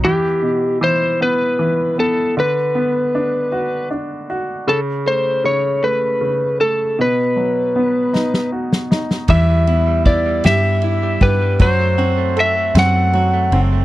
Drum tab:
RD |------------|------------|------------|------------|
SD |------------|------------|------------|------oo-ooo|
BD |------------|------------|------------|------------|

RD |x-x-x-x-x-x-|x-x-x-x-x-x-|
SD |------o-----|------o-----|
BD |o---o-----o-|o-----------|